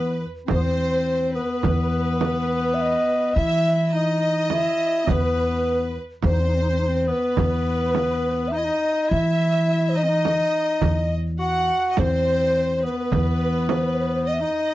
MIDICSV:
0, 0, Header, 1, 6, 480
1, 0, Start_track
1, 0, Tempo, 1147228
1, 688, Time_signature, 10, 3, 24, 8
1, 6168, End_track
2, 0, Start_track
2, 0, Title_t, "Violin section"
2, 0, Program_c, 0, 48
2, 0, Note_on_c, 0, 71, 87
2, 94, Note_off_c, 0, 71, 0
2, 203, Note_on_c, 0, 72, 79
2, 549, Note_off_c, 0, 72, 0
2, 565, Note_on_c, 0, 71, 72
2, 1401, Note_on_c, 0, 76, 87
2, 1406, Note_off_c, 0, 71, 0
2, 1627, Note_off_c, 0, 76, 0
2, 1645, Note_on_c, 0, 75, 82
2, 2127, Note_off_c, 0, 75, 0
2, 2137, Note_on_c, 0, 71, 81
2, 2500, Note_off_c, 0, 71, 0
2, 2618, Note_on_c, 0, 72, 78
2, 2956, Note_off_c, 0, 72, 0
2, 2973, Note_on_c, 0, 71, 80
2, 3570, Note_off_c, 0, 71, 0
2, 3578, Note_on_c, 0, 75, 70
2, 3796, Note_off_c, 0, 75, 0
2, 3812, Note_on_c, 0, 76, 85
2, 4167, Note_on_c, 0, 75, 79
2, 4170, Note_off_c, 0, 76, 0
2, 4656, Note_off_c, 0, 75, 0
2, 4767, Note_on_c, 0, 78, 75
2, 4964, Note_off_c, 0, 78, 0
2, 4983, Note_on_c, 0, 75, 54
2, 5010, Note_off_c, 0, 75, 0
2, 5016, Note_on_c, 0, 72, 80
2, 5370, Note_on_c, 0, 71, 74
2, 5373, Note_off_c, 0, 72, 0
2, 5953, Note_off_c, 0, 71, 0
2, 5972, Note_on_c, 0, 75, 64
2, 6027, Note_off_c, 0, 75, 0
2, 6032, Note_on_c, 0, 75, 72
2, 6168, Note_off_c, 0, 75, 0
2, 6168, End_track
3, 0, Start_track
3, 0, Title_t, "Ocarina"
3, 0, Program_c, 1, 79
3, 0, Note_on_c, 1, 71, 94
3, 98, Note_off_c, 1, 71, 0
3, 208, Note_on_c, 1, 72, 89
3, 551, Note_off_c, 1, 72, 0
3, 566, Note_on_c, 1, 71, 73
3, 596, Note_off_c, 1, 71, 0
3, 605, Note_on_c, 1, 71, 49
3, 631, Note_off_c, 1, 71, 0
3, 637, Note_on_c, 1, 71, 58
3, 663, Note_off_c, 1, 71, 0
3, 668, Note_on_c, 1, 71, 47
3, 694, Note_off_c, 1, 71, 0
3, 699, Note_on_c, 1, 71, 63
3, 725, Note_off_c, 1, 71, 0
3, 733, Note_on_c, 1, 71, 49
3, 758, Note_off_c, 1, 71, 0
3, 765, Note_on_c, 1, 71, 56
3, 789, Note_off_c, 1, 71, 0
3, 796, Note_on_c, 1, 71, 52
3, 821, Note_off_c, 1, 71, 0
3, 830, Note_on_c, 1, 71, 55
3, 852, Note_off_c, 1, 71, 0
3, 854, Note_on_c, 1, 71, 47
3, 881, Note_off_c, 1, 71, 0
3, 886, Note_on_c, 1, 71, 59
3, 912, Note_off_c, 1, 71, 0
3, 923, Note_on_c, 1, 71, 47
3, 946, Note_off_c, 1, 71, 0
3, 950, Note_on_c, 1, 71, 52
3, 973, Note_off_c, 1, 71, 0
3, 975, Note_on_c, 1, 71, 49
3, 1003, Note_off_c, 1, 71, 0
3, 1008, Note_on_c, 1, 71, 57
3, 1031, Note_off_c, 1, 71, 0
3, 1034, Note_on_c, 1, 71, 54
3, 1064, Note_off_c, 1, 71, 0
3, 1066, Note_on_c, 1, 71, 64
3, 1095, Note_off_c, 1, 71, 0
3, 1103, Note_on_c, 1, 71, 66
3, 1147, Note_on_c, 1, 76, 61
3, 1153, Note_off_c, 1, 71, 0
3, 1178, Note_on_c, 1, 75, 97
3, 1185, Note_off_c, 1, 76, 0
3, 1418, Note_on_c, 1, 76, 95
3, 1424, Note_off_c, 1, 75, 0
3, 1621, Note_off_c, 1, 76, 0
3, 1621, Note_on_c, 1, 76, 55
3, 1657, Note_on_c, 1, 75, 78
3, 1663, Note_off_c, 1, 76, 0
3, 1895, Note_on_c, 1, 76, 91
3, 1902, Note_off_c, 1, 75, 0
3, 2137, Note_on_c, 1, 71, 86
3, 2143, Note_off_c, 1, 76, 0
3, 2500, Note_off_c, 1, 71, 0
3, 2616, Note_on_c, 1, 72, 90
3, 2981, Note_on_c, 1, 71, 89
3, 2987, Note_off_c, 1, 72, 0
3, 3548, Note_on_c, 1, 76, 62
3, 3554, Note_off_c, 1, 71, 0
3, 3582, Note_on_c, 1, 75, 84
3, 3589, Note_off_c, 1, 76, 0
3, 3818, Note_on_c, 1, 76, 98
3, 3824, Note_off_c, 1, 75, 0
3, 4139, Note_on_c, 1, 72, 58
3, 4145, Note_off_c, 1, 76, 0
3, 4173, Note_on_c, 1, 75, 88
3, 4179, Note_off_c, 1, 72, 0
3, 4658, Note_off_c, 1, 75, 0
3, 4773, Note_on_c, 1, 78, 90
3, 5015, Note_on_c, 1, 72, 91
3, 5021, Note_off_c, 1, 78, 0
3, 5372, Note_off_c, 1, 72, 0
3, 5382, Note_on_c, 1, 71, 71
3, 5403, Note_off_c, 1, 71, 0
3, 5406, Note_on_c, 1, 71, 50
3, 5432, Note_off_c, 1, 71, 0
3, 5436, Note_on_c, 1, 71, 51
3, 5456, Note_off_c, 1, 71, 0
3, 5459, Note_on_c, 1, 71, 44
3, 5490, Note_off_c, 1, 71, 0
3, 5497, Note_on_c, 1, 71, 50
3, 5525, Note_off_c, 1, 71, 0
3, 5533, Note_on_c, 1, 71, 47
3, 5558, Note_off_c, 1, 71, 0
3, 5561, Note_on_c, 1, 71, 56
3, 5588, Note_off_c, 1, 71, 0
3, 5592, Note_on_c, 1, 71, 48
3, 5619, Note_off_c, 1, 71, 0
3, 5622, Note_on_c, 1, 71, 54
3, 5649, Note_off_c, 1, 71, 0
3, 5657, Note_on_c, 1, 71, 55
3, 5683, Note_off_c, 1, 71, 0
3, 5730, Note_on_c, 1, 72, 69
3, 5756, Note_off_c, 1, 72, 0
3, 5759, Note_on_c, 1, 72, 56
3, 5789, Note_off_c, 1, 72, 0
3, 5798, Note_on_c, 1, 72, 64
3, 5824, Note_off_c, 1, 72, 0
3, 5827, Note_on_c, 1, 72, 51
3, 5853, Note_off_c, 1, 72, 0
3, 5856, Note_on_c, 1, 72, 59
3, 5884, Note_off_c, 1, 72, 0
3, 5895, Note_on_c, 1, 72, 53
3, 5916, Note_off_c, 1, 72, 0
3, 5918, Note_on_c, 1, 72, 70
3, 5973, Note_on_c, 1, 75, 85
3, 5979, Note_off_c, 1, 72, 0
3, 5998, Note_on_c, 1, 76, 69
3, 6004, Note_off_c, 1, 75, 0
3, 6031, Note_on_c, 1, 75, 89
3, 6038, Note_off_c, 1, 76, 0
3, 6168, Note_off_c, 1, 75, 0
3, 6168, End_track
4, 0, Start_track
4, 0, Title_t, "Clarinet"
4, 0, Program_c, 2, 71
4, 0, Note_on_c, 2, 59, 76
4, 75, Note_off_c, 2, 59, 0
4, 192, Note_on_c, 2, 60, 67
4, 233, Note_on_c, 2, 59, 60
4, 239, Note_off_c, 2, 60, 0
4, 260, Note_on_c, 2, 60, 66
4, 267, Note_off_c, 2, 59, 0
4, 567, Note_on_c, 2, 59, 81
4, 573, Note_off_c, 2, 60, 0
4, 1405, Note_on_c, 2, 64, 66
4, 1411, Note_off_c, 2, 59, 0
4, 1646, Note_on_c, 2, 63, 67
4, 1652, Note_off_c, 2, 64, 0
4, 1886, Note_on_c, 2, 64, 71
4, 1892, Note_off_c, 2, 63, 0
4, 2118, Note_on_c, 2, 59, 72
4, 2125, Note_off_c, 2, 64, 0
4, 2491, Note_off_c, 2, 59, 0
4, 2608, Note_on_c, 2, 60, 59
4, 2641, Note_on_c, 2, 63, 55
4, 2647, Note_off_c, 2, 60, 0
4, 2678, Note_on_c, 2, 60, 59
4, 2685, Note_off_c, 2, 63, 0
4, 2712, Note_on_c, 2, 63, 59
4, 2718, Note_off_c, 2, 60, 0
4, 2738, Note_on_c, 2, 60, 64
4, 2744, Note_off_c, 2, 63, 0
4, 2772, Note_on_c, 2, 63, 56
4, 2778, Note_off_c, 2, 60, 0
4, 2804, Note_on_c, 2, 60, 62
4, 2810, Note_off_c, 2, 63, 0
4, 2845, Note_on_c, 2, 63, 60
4, 2851, Note_off_c, 2, 60, 0
4, 2878, Note_on_c, 2, 60, 65
4, 2884, Note_off_c, 2, 63, 0
4, 2960, Note_on_c, 2, 59, 76
4, 2967, Note_off_c, 2, 60, 0
4, 3565, Note_on_c, 2, 63, 72
4, 3571, Note_off_c, 2, 59, 0
4, 3592, Note_on_c, 2, 64, 60
4, 3598, Note_off_c, 2, 63, 0
4, 3621, Note_on_c, 2, 63, 75
4, 3627, Note_off_c, 2, 64, 0
4, 3805, Note_on_c, 2, 64, 76
4, 3811, Note_off_c, 2, 63, 0
4, 4168, Note_on_c, 2, 63, 74
4, 4174, Note_off_c, 2, 64, 0
4, 4199, Note_on_c, 2, 60, 62
4, 4206, Note_off_c, 2, 63, 0
4, 4221, Note_on_c, 2, 63, 77
4, 4227, Note_off_c, 2, 60, 0
4, 4653, Note_off_c, 2, 63, 0
4, 4766, Note_on_c, 2, 66, 74
4, 5012, Note_on_c, 2, 60, 72
4, 5018, Note_off_c, 2, 66, 0
4, 5339, Note_off_c, 2, 60, 0
4, 5339, Note_on_c, 2, 60, 47
4, 5369, Note_on_c, 2, 59, 68
4, 5375, Note_off_c, 2, 60, 0
4, 6027, Note_on_c, 2, 63, 75
4, 6033, Note_off_c, 2, 59, 0
4, 6168, Note_off_c, 2, 63, 0
4, 6168, End_track
5, 0, Start_track
5, 0, Title_t, "Upright bass"
5, 0, Program_c, 3, 32
5, 0, Note_on_c, 3, 40, 82
5, 95, Note_off_c, 3, 40, 0
5, 212, Note_on_c, 3, 40, 75
5, 574, Note_off_c, 3, 40, 0
5, 687, Note_on_c, 3, 40, 82
5, 1233, Note_off_c, 3, 40, 0
5, 1407, Note_on_c, 3, 52, 77
5, 1953, Note_off_c, 3, 52, 0
5, 2132, Note_on_c, 3, 40, 77
5, 2494, Note_off_c, 3, 40, 0
5, 2609, Note_on_c, 3, 40, 84
5, 2973, Note_off_c, 3, 40, 0
5, 3090, Note_on_c, 3, 40, 83
5, 3636, Note_off_c, 3, 40, 0
5, 3813, Note_on_c, 3, 52, 87
5, 4358, Note_off_c, 3, 52, 0
5, 4527, Note_on_c, 3, 40, 84
5, 4892, Note_off_c, 3, 40, 0
5, 5011, Note_on_c, 3, 40, 71
5, 5375, Note_off_c, 3, 40, 0
5, 5491, Note_on_c, 3, 40, 93
5, 6037, Note_off_c, 3, 40, 0
5, 6168, End_track
6, 0, Start_track
6, 0, Title_t, "Frame drum"
6, 202, Note_on_c, 9, 64, 71
6, 244, Note_off_c, 9, 64, 0
6, 682, Note_on_c, 9, 64, 69
6, 724, Note_off_c, 9, 64, 0
6, 924, Note_on_c, 9, 64, 67
6, 966, Note_off_c, 9, 64, 0
6, 1883, Note_on_c, 9, 64, 60
6, 1925, Note_off_c, 9, 64, 0
6, 2122, Note_on_c, 9, 64, 78
6, 2164, Note_off_c, 9, 64, 0
6, 2605, Note_on_c, 9, 64, 67
6, 2647, Note_off_c, 9, 64, 0
6, 3083, Note_on_c, 9, 64, 78
6, 3125, Note_off_c, 9, 64, 0
6, 3325, Note_on_c, 9, 64, 61
6, 3367, Note_off_c, 9, 64, 0
6, 4289, Note_on_c, 9, 64, 58
6, 4331, Note_off_c, 9, 64, 0
6, 4525, Note_on_c, 9, 64, 79
6, 4567, Note_off_c, 9, 64, 0
6, 5008, Note_on_c, 9, 64, 69
6, 5050, Note_off_c, 9, 64, 0
6, 5489, Note_on_c, 9, 64, 74
6, 5530, Note_off_c, 9, 64, 0
6, 5728, Note_on_c, 9, 64, 72
6, 5770, Note_off_c, 9, 64, 0
6, 6168, End_track
0, 0, End_of_file